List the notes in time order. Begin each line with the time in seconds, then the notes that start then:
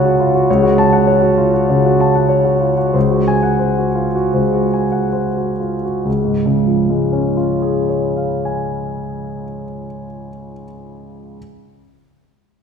Already playing: C#2 C#3 F4 F#4 C#5 F#5 A5
0.05 F#4
0.20 F4
0.34 F#4
0.50 C#2 C#5
0.63 F#4
0.78 A5
0.93 F#5
1.07 C#5
1.22 F#4
1.37 F4
1.54 F#4
1.69 C#3 C#5
1.86 F#4
2.00 A5
2.15 F#5
2.29 C#5
2.45 F#4
2.61 F4
2.78 F#4
2.94 C#2 C5
3.10 F#4
3.28 G#5
3.43 F#5
3.59 C5
3.78 F#4
3.95 F4
4.15 F#4
4.34 C#2 C5
4.54 F#4
4.74 G#5
4.92 F#5
5.12 C5
5.37 F#4
5.60 F4
5.85 F#4
6.05 C#2
6.25 G#2
6.46 C#3
6.67 F3
6.90 G#3
7.13 C#4
7.37 F4
7.62 G#4
7.89 C#5
8.17 F5
8.45 G#5